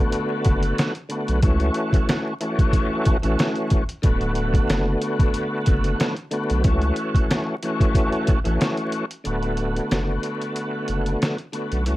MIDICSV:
0, 0, Header, 1, 4, 480
1, 0, Start_track
1, 0, Tempo, 652174
1, 1052, Time_signature, 4, 2, 24, 8
1, 8807, End_track
2, 0, Start_track
2, 0, Title_t, "Tonewheel organ"
2, 0, Program_c, 0, 16
2, 0, Note_on_c, 0, 50, 96
2, 0, Note_on_c, 0, 57, 83
2, 0, Note_on_c, 0, 59, 81
2, 0, Note_on_c, 0, 66, 99
2, 683, Note_off_c, 0, 50, 0
2, 686, Note_off_c, 0, 57, 0
2, 689, Note_off_c, 0, 59, 0
2, 693, Note_off_c, 0, 66, 0
2, 801, Note_on_c, 0, 50, 73
2, 807, Note_on_c, 0, 57, 72
2, 814, Note_on_c, 0, 59, 66
2, 821, Note_on_c, 0, 66, 85
2, 1030, Note_off_c, 0, 50, 0
2, 1033, Note_off_c, 0, 57, 0
2, 1036, Note_off_c, 0, 59, 0
2, 1039, Note_off_c, 0, 66, 0
2, 1043, Note_on_c, 0, 52, 87
2, 1050, Note_on_c, 0, 57, 87
2, 1057, Note_on_c, 0, 61, 88
2, 1064, Note_on_c, 0, 66, 93
2, 1716, Note_off_c, 0, 52, 0
2, 1720, Note_off_c, 0, 57, 0
2, 1723, Note_off_c, 0, 61, 0
2, 1726, Note_off_c, 0, 66, 0
2, 1770, Note_on_c, 0, 52, 91
2, 1776, Note_on_c, 0, 57, 83
2, 1784, Note_on_c, 0, 61, 86
2, 1790, Note_on_c, 0, 66, 116
2, 2331, Note_off_c, 0, 52, 0
2, 2334, Note_off_c, 0, 57, 0
2, 2337, Note_off_c, 0, 61, 0
2, 2341, Note_off_c, 0, 66, 0
2, 2374, Note_on_c, 0, 52, 102
2, 2381, Note_on_c, 0, 57, 76
2, 2387, Note_on_c, 0, 61, 81
2, 2394, Note_on_c, 0, 66, 106
2, 2817, Note_off_c, 0, 52, 0
2, 2820, Note_off_c, 0, 57, 0
2, 2824, Note_off_c, 0, 61, 0
2, 2827, Note_off_c, 0, 66, 0
2, 2959, Note_on_c, 0, 50, 98
2, 2966, Note_on_c, 0, 57, 86
2, 2972, Note_on_c, 0, 59, 80
2, 2978, Note_on_c, 0, 66, 99
2, 4522, Note_off_c, 0, 50, 0
2, 4525, Note_off_c, 0, 57, 0
2, 4528, Note_off_c, 0, 59, 0
2, 4532, Note_off_c, 0, 66, 0
2, 4642, Note_on_c, 0, 50, 72
2, 4648, Note_on_c, 0, 57, 72
2, 4655, Note_on_c, 0, 59, 67
2, 4662, Note_on_c, 0, 66, 84
2, 4870, Note_off_c, 0, 50, 0
2, 4873, Note_off_c, 0, 57, 0
2, 4877, Note_off_c, 0, 59, 0
2, 4880, Note_off_c, 0, 66, 0
2, 4881, Note_on_c, 0, 52, 84
2, 4888, Note_on_c, 0, 57, 86
2, 4895, Note_on_c, 0, 61, 89
2, 4901, Note_on_c, 0, 66, 97
2, 5555, Note_off_c, 0, 52, 0
2, 5559, Note_off_c, 0, 57, 0
2, 5562, Note_off_c, 0, 61, 0
2, 5565, Note_off_c, 0, 66, 0
2, 5612, Note_on_c, 0, 52, 91
2, 5619, Note_on_c, 0, 57, 84
2, 5626, Note_on_c, 0, 61, 86
2, 5633, Note_on_c, 0, 66, 115
2, 6172, Note_off_c, 0, 52, 0
2, 6175, Note_off_c, 0, 57, 0
2, 6179, Note_off_c, 0, 61, 0
2, 6182, Note_off_c, 0, 66, 0
2, 6214, Note_on_c, 0, 52, 100
2, 6221, Note_on_c, 0, 57, 76
2, 6227, Note_on_c, 0, 61, 83
2, 6233, Note_on_c, 0, 66, 108
2, 6657, Note_off_c, 0, 52, 0
2, 6661, Note_off_c, 0, 57, 0
2, 6664, Note_off_c, 0, 61, 0
2, 6667, Note_off_c, 0, 66, 0
2, 6800, Note_on_c, 0, 50, 97
2, 6807, Note_on_c, 0, 57, 83
2, 6814, Note_on_c, 0, 59, 82
2, 6821, Note_on_c, 0, 66, 98
2, 8363, Note_off_c, 0, 50, 0
2, 8366, Note_off_c, 0, 57, 0
2, 8369, Note_off_c, 0, 59, 0
2, 8373, Note_off_c, 0, 66, 0
2, 8481, Note_on_c, 0, 50, 74
2, 8487, Note_on_c, 0, 57, 72
2, 8494, Note_on_c, 0, 59, 68
2, 8501, Note_on_c, 0, 66, 81
2, 8710, Note_off_c, 0, 50, 0
2, 8713, Note_off_c, 0, 57, 0
2, 8716, Note_off_c, 0, 59, 0
2, 8720, Note_off_c, 0, 66, 0
2, 8722, Note_on_c, 0, 52, 86
2, 8729, Note_on_c, 0, 57, 88
2, 8735, Note_on_c, 0, 61, 87
2, 8742, Note_on_c, 0, 66, 99
2, 8807, Note_off_c, 0, 52, 0
2, 8807, Note_off_c, 0, 57, 0
2, 8807, Note_off_c, 0, 61, 0
2, 8807, Note_off_c, 0, 66, 0
2, 8807, End_track
3, 0, Start_track
3, 0, Title_t, "Sub bass"
3, 0, Program_c, 1, 38
3, 338, Note_on_c, 1, 30, 85
3, 537, Note_off_c, 1, 30, 0
3, 949, Note_on_c, 1, 35, 88
3, 1055, Note_on_c, 1, 37, 104
3, 1066, Note_off_c, 1, 35, 0
3, 1255, Note_off_c, 1, 37, 0
3, 2388, Note_on_c, 1, 33, 90
3, 2477, Note_off_c, 1, 33, 0
3, 2974, Note_on_c, 1, 26, 100
3, 3375, Note_off_c, 1, 26, 0
3, 3455, Note_on_c, 1, 30, 107
3, 3655, Note_off_c, 1, 30, 0
3, 4177, Note_on_c, 1, 30, 86
3, 4376, Note_off_c, 1, 30, 0
3, 4788, Note_on_c, 1, 35, 89
3, 4894, Note_on_c, 1, 37, 110
3, 4905, Note_off_c, 1, 35, 0
3, 5094, Note_off_c, 1, 37, 0
3, 6228, Note_on_c, 1, 33, 91
3, 6317, Note_off_c, 1, 33, 0
3, 6816, Note_on_c, 1, 26, 104
3, 7216, Note_off_c, 1, 26, 0
3, 7297, Note_on_c, 1, 30, 103
3, 7496, Note_off_c, 1, 30, 0
3, 8015, Note_on_c, 1, 30, 83
3, 8215, Note_off_c, 1, 30, 0
3, 8628, Note_on_c, 1, 35, 89
3, 8736, Note_on_c, 1, 37, 107
3, 8747, Note_off_c, 1, 35, 0
3, 8807, Note_off_c, 1, 37, 0
3, 8807, End_track
4, 0, Start_track
4, 0, Title_t, "Drums"
4, 91, Note_on_c, 9, 42, 95
4, 165, Note_off_c, 9, 42, 0
4, 328, Note_on_c, 9, 42, 80
4, 337, Note_on_c, 9, 36, 91
4, 401, Note_off_c, 9, 42, 0
4, 410, Note_off_c, 9, 36, 0
4, 461, Note_on_c, 9, 42, 53
4, 534, Note_off_c, 9, 42, 0
4, 576, Note_on_c, 9, 42, 96
4, 582, Note_on_c, 9, 38, 120
4, 650, Note_off_c, 9, 42, 0
4, 656, Note_off_c, 9, 38, 0
4, 698, Note_on_c, 9, 42, 35
4, 772, Note_off_c, 9, 42, 0
4, 807, Note_on_c, 9, 42, 71
4, 881, Note_off_c, 9, 42, 0
4, 943, Note_on_c, 9, 42, 61
4, 1017, Note_off_c, 9, 42, 0
4, 1049, Note_on_c, 9, 42, 94
4, 1053, Note_on_c, 9, 36, 115
4, 1123, Note_off_c, 9, 42, 0
4, 1127, Note_off_c, 9, 36, 0
4, 1177, Note_on_c, 9, 42, 35
4, 1251, Note_off_c, 9, 42, 0
4, 1283, Note_on_c, 9, 42, 66
4, 1357, Note_off_c, 9, 42, 0
4, 1420, Note_on_c, 9, 36, 89
4, 1427, Note_on_c, 9, 42, 59
4, 1493, Note_off_c, 9, 36, 0
4, 1500, Note_off_c, 9, 42, 0
4, 1537, Note_on_c, 9, 42, 95
4, 1540, Note_on_c, 9, 38, 119
4, 1610, Note_off_c, 9, 42, 0
4, 1614, Note_off_c, 9, 38, 0
4, 1771, Note_on_c, 9, 42, 80
4, 1845, Note_off_c, 9, 42, 0
4, 1904, Note_on_c, 9, 36, 94
4, 1906, Note_on_c, 9, 42, 53
4, 1978, Note_off_c, 9, 36, 0
4, 1979, Note_off_c, 9, 42, 0
4, 2008, Note_on_c, 9, 36, 88
4, 2010, Note_on_c, 9, 42, 96
4, 2081, Note_off_c, 9, 36, 0
4, 2084, Note_off_c, 9, 42, 0
4, 2248, Note_on_c, 9, 42, 81
4, 2257, Note_on_c, 9, 36, 93
4, 2322, Note_off_c, 9, 42, 0
4, 2330, Note_off_c, 9, 36, 0
4, 2380, Note_on_c, 9, 42, 56
4, 2454, Note_off_c, 9, 42, 0
4, 2496, Note_on_c, 9, 42, 93
4, 2502, Note_on_c, 9, 38, 121
4, 2570, Note_off_c, 9, 42, 0
4, 2576, Note_off_c, 9, 38, 0
4, 2617, Note_on_c, 9, 42, 34
4, 2690, Note_off_c, 9, 42, 0
4, 2726, Note_on_c, 9, 42, 73
4, 2734, Note_on_c, 9, 36, 91
4, 2799, Note_off_c, 9, 42, 0
4, 2807, Note_off_c, 9, 36, 0
4, 2862, Note_on_c, 9, 42, 61
4, 2936, Note_off_c, 9, 42, 0
4, 2968, Note_on_c, 9, 42, 94
4, 2972, Note_on_c, 9, 36, 115
4, 3041, Note_off_c, 9, 42, 0
4, 3046, Note_off_c, 9, 36, 0
4, 3097, Note_on_c, 9, 42, 35
4, 3171, Note_off_c, 9, 42, 0
4, 3203, Note_on_c, 9, 42, 65
4, 3277, Note_off_c, 9, 42, 0
4, 3339, Note_on_c, 9, 36, 82
4, 3346, Note_on_c, 9, 42, 58
4, 3413, Note_off_c, 9, 36, 0
4, 3419, Note_off_c, 9, 42, 0
4, 3456, Note_on_c, 9, 42, 100
4, 3459, Note_on_c, 9, 38, 125
4, 3530, Note_off_c, 9, 42, 0
4, 3533, Note_off_c, 9, 38, 0
4, 3692, Note_on_c, 9, 42, 79
4, 3765, Note_off_c, 9, 42, 0
4, 3824, Note_on_c, 9, 36, 95
4, 3826, Note_on_c, 9, 42, 56
4, 3897, Note_off_c, 9, 36, 0
4, 3900, Note_off_c, 9, 42, 0
4, 3930, Note_on_c, 9, 42, 93
4, 4004, Note_off_c, 9, 42, 0
4, 4166, Note_on_c, 9, 42, 82
4, 4176, Note_on_c, 9, 36, 90
4, 4240, Note_off_c, 9, 42, 0
4, 4250, Note_off_c, 9, 36, 0
4, 4299, Note_on_c, 9, 42, 56
4, 4373, Note_off_c, 9, 42, 0
4, 4415, Note_on_c, 9, 42, 97
4, 4421, Note_on_c, 9, 38, 124
4, 4488, Note_off_c, 9, 42, 0
4, 4495, Note_off_c, 9, 38, 0
4, 4537, Note_on_c, 9, 42, 34
4, 4610, Note_off_c, 9, 42, 0
4, 4646, Note_on_c, 9, 42, 71
4, 4720, Note_off_c, 9, 42, 0
4, 4782, Note_on_c, 9, 42, 61
4, 4856, Note_off_c, 9, 42, 0
4, 4888, Note_on_c, 9, 42, 92
4, 4892, Note_on_c, 9, 36, 117
4, 4962, Note_off_c, 9, 42, 0
4, 4965, Note_off_c, 9, 36, 0
4, 5017, Note_on_c, 9, 42, 36
4, 5090, Note_off_c, 9, 42, 0
4, 5124, Note_on_c, 9, 42, 64
4, 5197, Note_off_c, 9, 42, 0
4, 5260, Note_on_c, 9, 36, 85
4, 5267, Note_on_c, 9, 42, 57
4, 5333, Note_off_c, 9, 36, 0
4, 5341, Note_off_c, 9, 42, 0
4, 5378, Note_on_c, 9, 42, 99
4, 5381, Note_on_c, 9, 38, 123
4, 5451, Note_off_c, 9, 42, 0
4, 5454, Note_off_c, 9, 38, 0
4, 5612, Note_on_c, 9, 42, 80
4, 5686, Note_off_c, 9, 42, 0
4, 5744, Note_on_c, 9, 36, 93
4, 5748, Note_on_c, 9, 42, 53
4, 5818, Note_off_c, 9, 36, 0
4, 5821, Note_off_c, 9, 42, 0
4, 5848, Note_on_c, 9, 36, 88
4, 5852, Note_on_c, 9, 42, 97
4, 5922, Note_off_c, 9, 36, 0
4, 5925, Note_off_c, 9, 42, 0
4, 5979, Note_on_c, 9, 42, 35
4, 6053, Note_off_c, 9, 42, 0
4, 6088, Note_on_c, 9, 42, 79
4, 6097, Note_on_c, 9, 36, 94
4, 6161, Note_off_c, 9, 42, 0
4, 6170, Note_off_c, 9, 36, 0
4, 6221, Note_on_c, 9, 42, 57
4, 6295, Note_off_c, 9, 42, 0
4, 6336, Note_on_c, 9, 42, 96
4, 6342, Note_on_c, 9, 38, 122
4, 6410, Note_off_c, 9, 42, 0
4, 6416, Note_off_c, 9, 38, 0
4, 6458, Note_on_c, 9, 42, 34
4, 6531, Note_off_c, 9, 42, 0
4, 6567, Note_on_c, 9, 42, 72
4, 6641, Note_off_c, 9, 42, 0
4, 6703, Note_on_c, 9, 42, 62
4, 6777, Note_off_c, 9, 42, 0
4, 6808, Note_on_c, 9, 42, 93
4, 6881, Note_off_c, 9, 42, 0
4, 6937, Note_on_c, 9, 42, 37
4, 7010, Note_off_c, 9, 42, 0
4, 7043, Note_on_c, 9, 42, 64
4, 7117, Note_off_c, 9, 42, 0
4, 7186, Note_on_c, 9, 42, 57
4, 7260, Note_off_c, 9, 42, 0
4, 7296, Note_on_c, 9, 42, 96
4, 7299, Note_on_c, 9, 38, 121
4, 7369, Note_off_c, 9, 42, 0
4, 7373, Note_off_c, 9, 38, 0
4, 7531, Note_on_c, 9, 42, 78
4, 7604, Note_off_c, 9, 42, 0
4, 7666, Note_on_c, 9, 42, 53
4, 7740, Note_off_c, 9, 42, 0
4, 7771, Note_on_c, 9, 42, 95
4, 7845, Note_off_c, 9, 42, 0
4, 8007, Note_on_c, 9, 42, 79
4, 8081, Note_off_c, 9, 42, 0
4, 8141, Note_on_c, 9, 42, 55
4, 8214, Note_off_c, 9, 42, 0
4, 8257, Note_on_c, 9, 42, 93
4, 8263, Note_on_c, 9, 38, 125
4, 8330, Note_off_c, 9, 42, 0
4, 8337, Note_off_c, 9, 38, 0
4, 8378, Note_on_c, 9, 42, 35
4, 8452, Note_off_c, 9, 42, 0
4, 8487, Note_on_c, 9, 42, 72
4, 8561, Note_off_c, 9, 42, 0
4, 8623, Note_on_c, 9, 42, 60
4, 8697, Note_off_c, 9, 42, 0
4, 8729, Note_on_c, 9, 42, 94
4, 8803, Note_off_c, 9, 42, 0
4, 8807, End_track
0, 0, End_of_file